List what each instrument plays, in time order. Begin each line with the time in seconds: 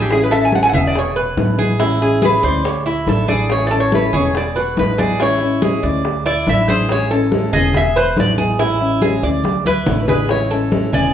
Already playing: upright bass A1, nylon-string guitar A3, cuban tres G#4
0.02 resonator guitar played with a steel bar G4
0.10 nylon-string guitar E3 G#3 C#4 E4, resonator guitar played with a steel bar G#4, high bongo, high conga
0.23 resonator guitar played with a steel bar B4
0.31 nylon-string guitar G#3 C#4 E4, cuban tres A4, resonator guitar played with a steel bar E5, high conga
0.45 resonator guitar played with a steel bar G#5
0.52 nylon-string guitar E3 G#3 C#4 E4, resonator guitar played with a steel bar F#5, high bongo, high conga
0.63 resonator guitar played with a steel bar G#5
0.69 upright bass E1, cuban tres G#4, resonator guitar played with a steel bar F#5
0.73 nylon-string guitar G#3 C#4 E4, resonator guitar played with a steel bar E5, low conga
0.87 resonator guitar played with a steel bar D5
0.95 resonator guitar played with a steel bar C#5, muted nylon-string guitar stroke, high bongo, high conga
1.16 cuban tres B4, high bongo, high conga
1.37 upright bass A1, nylon-string guitar B2 D3 G#3 B3 E4, high bongo, low bongo, high conga
1.58 nylon-string guitar G#3 B3 E4, cuban tres G#4, high bongo, high conga
1.79 nylon-string guitar E3 G#3 C#4 E4, cuban tres E4, high bongo, high conga
2.01 nylon-string guitar G#3 C#4 E4, resonator guitar played with a steel bar G#4, high conga
2.22 nylon-string guitar E3 G#3 C#4 E4, cuban tres G#4, resonator guitar played with a steel bar B4, high bongo, high conga
2.43 upright bass D2, nylon-string guitar G#3 C#4 E4, resonator guitar played with a steel bar C5, cuban tres D5
2.65 resonator guitar played with a steel bar C#5, muted nylon-string guitar stroke, high bongo, high conga
2.86 cuban tres E4, resonator guitar played with a steel bar E4, high bongo, high conga
3.07 upright bass A1, nylon-string guitar D3 A3 D4 E4, resonator guitar played with a steel bar A4, high bongo, low bongo, high conga
3.28 nylon-string guitar A3 D4 E4, cuban tres G#4, resonator guitar played with a steel bar D5, high bongo, high conga
3.49 nylon-string guitar E3 G#3 C#4 E4, resonator guitar played with a steel bar C#5, high bongo, high conga
3.67 resonator guitar played with a steel bar D5
3.71 nylon-string guitar G#3 C#4 E4, cuban tres A4, high conga
3.80 resonator guitar played with a steel bar C#5
3.92 nylon-string guitar E3 G#3 C#4 E4, resonator guitar played with a steel bar B4, high bongo, high conga
4.13 upright bass E1, nylon-string guitar G#3 C#4 E4, cuban tres G#4, resonator guitar played with a steel bar C#5, low conga
4.35 resonator guitar played with a steel bar D5, muted nylon-string guitar stroke, high bongo, high conga
4.56 resonator guitar played with a steel bar F#4, cuban tres B4, high bongo, high conga
4.76 upright bass A1, nylon-string guitar B2 D3 G#3 B3 E4, resonator guitar played with a steel bar B4, high bongo, low bongo, high conga
4.97 nylon-string guitar G#3 B3 E4, cuban tres G#4, resonator guitar played with a steel bar D5, high bongo, high conga
5.19 nylon-string guitar E3 G#3 C#4 E4, cuban tres E4, resonator guitar played with a steel bar C#5, high bongo
5.41 nylon-string guitar G#3 C#4 E4, high conga
5.62 nylon-string guitar E3 G#3 C#4 E4, cuban tres G#4, high bongo, high conga
5.83 upright bass D2, nylon-string guitar G#3 C#4 E4, cuban tres D5
6.04 muted nylon-string guitar stroke, high bongo, high conga
6.25 cuban tres E4, resonator guitar played with a steel bar D5, high bongo, high conga
6.47 upright bass A1, nylon-string guitar D3 A3 D4 E4, resonator guitar played with a steel bar E5, high bongo, low bongo, high conga
6.68 nylon-string guitar A3 D4 E4, cuban tres G#4, resonator guitar played with a steel bar C5, high bongo, high conga
6.89 nylon-string guitar E3 G#3 C#4 E4, resonator guitar played with a steel bar C#5, high bongo
7.10 nylon-string guitar G#3 C#4 E4, cuban tres A4, high conga
7.31 nylon-string guitar E3 G#3 C#4 E4, high bongo, high conga
7.53 upright bass E1, nylon-string guitar G#3 C#4 E4, cuban tres G#4, resonator guitar played with a steel bar D#5, low conga
7.74 resonator guitar played with a steel bar E5, muted nylon-string guitar stroke, high bongo, high conga, low conga
7.95 cuban tres B4, resonator guitar played with a steel bar C5, high bongo, high conga
8.17 upright bass A1, nylon-string guitar B2 D3 G#3 B3 E4, resonator guitar played with a steel bar D5, high bongo, low bongo, high conga
8.38 nylon-string guitar G#3 B3 E4, cuban tres G#4, high bongo, high conga
8.59 nylon-string guitar E3 G#3 C#4 E4, cuban tres E4, high bongo, high conga
8.81 nylon-string guitar G#3 C#4 E4, high conga
9.02 nylon-string guitar E3 G#3 C#4 E4, cuban tres G#4, high bongo, high conga
9.23 upright bass D2, nylon-string guitar G#3 C#4 E4, cuban tres D5
9.44 muted nylon-string guitar stroke, high bongo, high conga
9.66 cuban tres E4, resonator guitar played with a steel bar B4, high bongo, high conga
9.86 upright bass A1, nylon-string guitar D3 A3 D4 E4, high bongo, low bongo, low conga
10.08 nylon-string guitar A3 D4 E4, cuban tres G#4, resonator guitar played with a steel bar B4, high bongo, low conga
10.29 nylon-string guitar E3 G#3 C#4 E4, resonator guitar played with a steel bar C#5, high bongo, high conga
10.50 nylon-string guitar G#3 C#4 E4, cuban tres A4, high conga
10.71 nylon-string guitar E3 G#3 C#4 E4, high bongo, high conga
10.92 upright bass E1, nylon-string guitar G#3 C#4 E4, cuban tres G#4, resonator guitar played with a steel bar D5, low conga